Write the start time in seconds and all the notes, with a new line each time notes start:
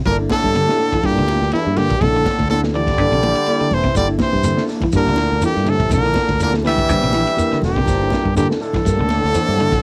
0.05 G1 A#2 D3 A#3 D4 E4 A4 A#4, kick, ride bell, high conga, low conga
0.19 D4 E4, muted clean electric guitar stroke
0.29 A2 D3 A#3 D4 E4 A4, kick, snare, ride bell, high conga
0.43 G2, kick, snare
0.53 D3 A#3 D4 E4 G4, ride bell, high conga
0.67 D4 E4 A4, snare, high conga
0.79 A#3 D4 E4 A4, open hi-hat
0.92 E3, kick, ride bell
1.01 G2 A#2 A#3 D4 E4, kick, snare, ride bell, high conga
1.05 G4 A4
1.16 D2 D3 D4 E4 A4, high conga
1.28 A#3 D4 E4, muted clean electric guitar stroke, snare, ride bell, high conga
1.42 D2, snare
1.51 E2 G2 E3 A#3 D4 E4 A4, ride bell, high conga
1.66 G2 D4 E4 A4
1.74 G2 A#2 D3 A#3 D4 G4 A4, snare, ride bell, low conga
1.90 A#1, kick, ride bell
1.99 A#1 A2 C3 D3 A#3 D4 E4 A4, kick, snare, ride bell, high conga, low conga
2.14 D3 D4 E4 A4
2.25 A#3 D4 E4 A4, kick, snare, ride bell, high conga
2.38 D2, kick, snare, ride bell
2.48 A2 D3 A#3 D4 E4 A4, ride bell, high conga
2.63 D4 E4 A4, snare, high conga
2.74 D3 E3 G3 D4 E4 A4 D5, muted clean electric guitar stroke, open hi-hat
2.87 kick, snare, ride bell
2.98 G2 D3 A#3 D4 E4 A4, kick, ride bell, high conga
3.12 A#1 C3 D4 E4 A4
3.23 E3 A#3 D4 E4 A4, ride bell, high conga
3.35 ride bell
3.46 A#3 D4 E4 A4, ride bell, high conga
3.60 D3 D4 E4 A4, muted fingered electric bass stroke
3.71 E1 C3 E3 A#3 D4 E4 A4 C5, open hi-hat, low conga
3.84 C3, kick, snare
3.95 G1 D3 G3 A#3 D4 E4 A4 D5, kick, snare, ride bell, high conga, low conga, shekere
4.08 D4 E4 A4
4.18 C3 E3 A#3 D4 E4, kick, snare, ride bell, high conga, shekere
4.23 C5
4.33 G2, kick, snare
4.44 D3 A#3 D4 E4 A4, ride bell, high conga, shekere
4.57 D4 E4 A4, snare
4.67 A#3 D4 E4 A4, snare, open hi-hat, shekere
4.80 E3, kick, ride bell, low conga
4.92 G2 A#2 D3 A#3 D4 E4 G4, kick, snare, ride bell, shekere
4.97 A#4
5.05 D2 D4 E4 A4, high conga
5.09 D3
5.15 A#3 D4 E4 A4, snare, ride bell, high conga, shekere
5.32 D2
5.42 G2 A#2 E3 A#3 D4 E4 G4 A4, muted fingered electric bass stroke, ride bell, high conga, shekere
5.54 G2 E4 A4, muted clean electric guitar stroke, snare
5.63 A#3 D4 E4 A4, ride bell, low conga, shekere
5.67 A2 C3 D3 A4
5.80 A#1, kick, ride bell
5.90 A#1 A#2 C3 A#3 D4 E4 A4 A#4, kick, snare, ride bell, high conga, low conga, shekere
5.94 D3
6.02 D4 E4 A4
6.06 D3
6.14 A#3 D4 E4 A4, kick, snare, ride bell, high conga, shekere
6.29 D2, kick, snare, ride bell
6.38 A#3 D4 E4 A4, ride bell, high conga, shekere
6.42 A#2 D3 A#4
6.52 D4 A4, snare, high conga
6.63 E3 A#3 D4 E4 A4, open hi-hat, high conga, shekere
6.67 G3 E5
6.76 kick, ride bell, low conga
6.88 G2 D3 A#3 D4 E4 C5, kick, ride bell, high conga, shekere
7.02 A#1 C3 D4 E4 A4, high conga
7.13 E3 A#3 D4 E4 A4, snare, ride bell, high conga, shekere
7.27 ride bell
7.37 A#3 D4 E4 A#4, ride bell, high conga, shekere
7.53 D3 D4 E4 A4, muted fingered electric bass stroke, snare
7.62 E1 G2 A#3 D4 E4 G4 A4, snare, open hi-hat, low conga, shekere
7.66 A#2
7.76 C3, kick
7.86 G1 A#3 D4 E4 C5, kick, snare, ride bell, high conga, low conga, shekere
8.01 D4 A4
8.10 A#3 D4 E4 A4, kick, snare, ride bell, high conga, shekere
8.25 G2, kick
8.35 G2 A#2 D3 A#3 D4 E4 G4 A4, ride bell, high conga, shekere
8.49 D4 E4 A4, snare, high conga
8.61 A2 D3 D4 E4 A4, open hi-hat, shekere
8.73 E3, kick, snare, ride bell, low conga
8.85 G2 A#3 D4 E4 A#4, kick, snare, ride bell, high conga, shekere
8.97 D2 D3 D4 E4 A4, high conga
9.09 A#3 D4 E4 A4, ride bell, high conga, shekere
9.24 D2, snare
9.33 E3 A#3 D4 E4 C5, muted fingered electric bass stroke, ride bell, high conga, shekere
9.47 G2 D4 E4 A4
9.57 D3 A#3 D4 E4 A4, ride bell, low conga, shekere
9.72 A#1, kick, snare, ride bell